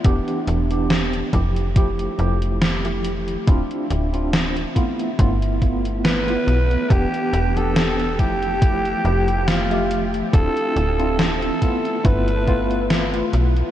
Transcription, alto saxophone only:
X:1
M:4/4
L:1/16
Q:"Swing 16ths" 1/4=70
K:Flyd
V:1 name="Alto saxophone"
z16 | z12 B4 | G3 A3 G6 F3 z | A4 A4 B6 z2 |]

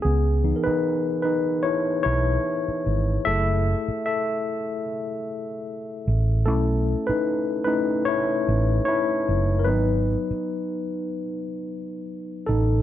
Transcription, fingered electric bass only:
X:1
M:4/4
L:1/16
Q:"Swing 16ths" 1/4=75
K:C#m
V:1 name="Fingered electric bass" clef=bass
C,,3 z6 z B,,,2 z2 G,,,2 | F,,,3 z8 z3 A,,,2 | B,,,3 z6 z A,,,2 z2 F,,,2 | G,,,3 z8 z3 A,,,2 |]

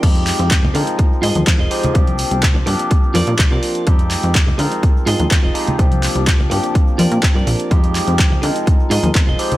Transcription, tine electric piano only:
X:1
M:4/4
L:1/8
Q:1/4=125
K:Fdor
V:1 name="Tine electric piano"
[F,A,CEG]3 [F,A,CEB]4 [F,A,CEG] | [F,B,CDG]3 [F,B,CDG]4- [F,B,CDG] | [F,A,CEG]3 [F,A,CEB]4 [F,A,CEG] | [F,B,CDG]3 [F,B,CDG]4- [F,B,CDG] |
[F,A,CEG]3 [F,A,CEB]4 [F,A,CEG] |]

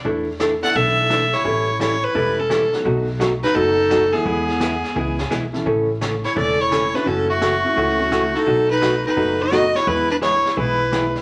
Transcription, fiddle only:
X:1
M:4/4
L:1/8
Q:"Swing" 1/4=171
K:A
V:1 name="Fiddle"
z3 f e3 c- | c2 c B2 A2 z | z3 B A3 G- | G6 z2 |
z3 c d c2 B | A F6 A- | A B2 B2 ^d2 c | B B c2 B3 z |]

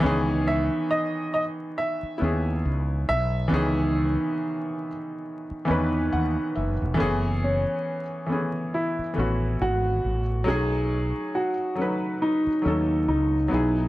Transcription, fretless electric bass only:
X:1
M:4/4
L:1/16
Q:"Swing 16ths" 1/4=69
K:F#dor
V:1 name="Fretless electric bass" clef=bass
C,,3 z6 z D,,2 C,,2 B,,,2 | C,,3 z6 z E,,2 D,, z F,,, E,,, | F,,,3 z6 z A,,,2 G,,,2 A,,,2 | B,,,3 z6 z D,,2 C,,2 B,,,2 |]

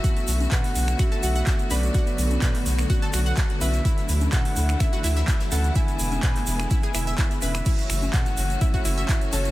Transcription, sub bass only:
X:1
M:4/4
L:1/8
Q:1/4=126
K:F#m
V:1 name="Sub bass" clef=bass
z B,,, z B,,, z B,,, z B,,, | z B,,, z B,,, z B,,, z B,,, | z D,, z D,, z D,, z D,, | z E,,, z E,,, z E,,, z E,,, |
z F,,, z F,,, z F,,, z F,,, |]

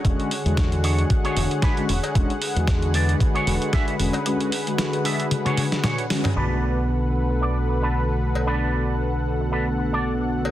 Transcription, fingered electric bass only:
X:1
M:4/4
L:1/16
Q:"Swing 16ths" 1/4=114
K:Bdor
V:1 name="Fingered electric bass" clef=bass
E,,, z2 E,,4 z3 E,,, z3 E,,, z | E,,, z2 E,,4 z3 E,,, z3 E,,, z | z16 | B,,,16- |
B,,,16 |]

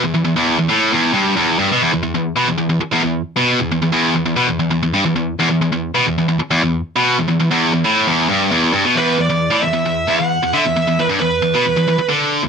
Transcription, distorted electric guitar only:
X:1
M:4/4
L:1/16
Q:1/4=134
K:Em
V:1 name="Distorted electric guitar" clef=bass
E,, E,, E,, E,,2 E,, A,,2 E,,2 G,,2 E,,2 G,, B,, | E,, E,, E,, E,,2 B,, E,, E,, E,, z E,, E,,2 z B,,2 | E,, E,, E,, E,,2 E,, E,, B,, E,, E,, E,, E,, G,, E,, E,,2 | E,, E,, E,, E,,2 B,, E,, E,, E,, z E,, E,,2 z B,,2 |
E,, E,, E,, E,,2 E,, A,,2 E,,2 G,,2 E,,2 G,, B,, | E,,2 E,, E,,2 A,, E,, E,, E,,2 E,, E,,2 E,, D, E,, | E,, E,, E,, G,, E,,2 E,, B,, E,, E,, E,, z D,3 E,, |]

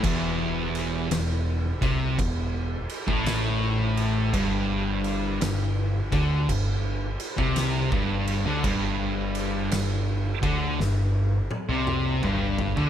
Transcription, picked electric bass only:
X:1
M:4/4
L:1/16
Q:"Swing" 1/4=56
K:G
V:1 name="Picked electric bass" clef=bass
E,,,4 E,,,2 C,,2 E,,,2 z A,,,4- A,,, | G,,,4 G,,,2 D,,2 G,,,2 z C,,2 G,,,2 D,, | G,,,4 G,,,2 D,,2 G,,,2 z C,,2 G,,,2 D,, |]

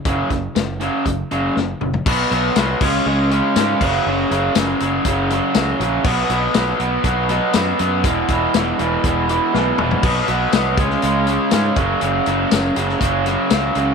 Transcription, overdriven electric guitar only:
X:1
M:4/4
L:1/8
Q:1/4=121
K:F#mix
V:1 name="Overdriven electric guitar" clef=bass
[F,,C,F,] [F,,C,] [F,,C,] [F,,C,F,] [F,,C,] [F,,C,F,] [F,,C,] [F,,C,] | [B,,F,B,] [B,,F,B,] [B,,F,B,] [C,G,C] [C,G,C] [C,G,C] [C,G,C] [F,,C,F,] | [F,,C,F,] [F,,C,F,] [F,,C,F,] [F,,C,F,] [F,,C,F,] [F,,C,F,] [F,,C,F,] [F,,C,F,] | [B,,F,B,] [B,,F,B,] [B,,F,B,] [B,,F,B,] [B,,F,B,] [B,,F,B,] [B,,F,B,] [B,,F,B,] |
[E,,B,,E,] [E,,B,,E,] [E,,B,,E,] [E,,B,,E,] [E,,B,,E,] [E,,B,,E,] [E,,B,,E,] [E,,B,,E,] | [B,,F,B,] [B,,F,B,] [B,,F,B,] [C,G,C] [C,G,C] [C,G,C] [C,G,C] [F,,C,F,] | [F,,C,F,] [F,,C,F,] [F,,C,F,] [F,,C,F,] [F,,C,F,] [F,,C,F,] [F,,C,F,] [F,,C,F,] |]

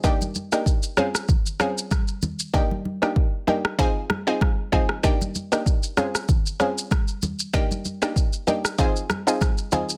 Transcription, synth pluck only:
X:1
M:4/4
L:1/16
Q:"Swing 16ths" 1/4=96
K:Eb
V:1 name="Synth pluck"
[B,DEG]3 [B,DEG] z2 [C_DFA] z3 [CDFA] z4 z | [B,DEG]3 [B,DEG] z2 [B,DEG] z [CEFA]3 [CEFA] z2 [CEFA] z | [B,DEG]3 [B,DEG] z2 [C_DFA] z3 [CDFA] z4 z | [B,DEG]3 [B,DEG] z2 [B,DEG] z [CEFA]3 [CEFA] z2 [CEFA] z |]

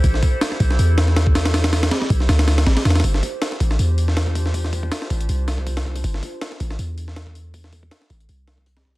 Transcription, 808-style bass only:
X:1
M:4/4
L:1/8
Q:"Swing 16ths" 1/4=160
K:Gmix
V:1 name="808-style bass" clef=bass
A,,, z2 B,,, E,,4- | E,,2 z B,,, D,,2 A,,, E,, | G,,, z2 A,,, E,,4- | E,,2 z A,,, C,,4 |
G,,, z2 A,,, E,,4- | E,,2 z A,,, C,,4 |]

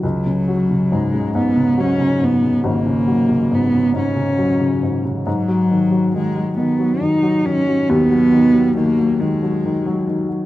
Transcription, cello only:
X:1
M:6/8
L:1/8
Q:3/8=46
K:G#m
V:1 name="Cello"
F,2 G, B, C B, | A,2 B, C2 z | F,2 G, B, D C | B,2 A, G,2 z |]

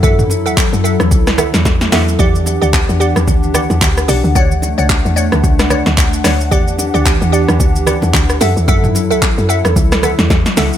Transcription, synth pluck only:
X:1
M:4/4
L:1/16
Q:"Swing 16ths" 1/4=111
K:Edor
V:1 name="Synth pluck"
[Aef]3 [Aef] z2 [Aef] z3 [Aef] z3 [Aef]2 | [Gdf]3 [Gdf] z2 [Gdf] z3 [Gdf] z3 [Gdf]2 | [cdf]3 [cdf] z2 [cdf] z3 [cdf] z3 [cdf]2 | [Gdf]3 [Gdf] z2 [Gdf] z3 [Gdf] z3 [Aef]2 |
[Aef]3 [Aef] z2 [Aef] z3 [Aef] z3 [Aef]2 |]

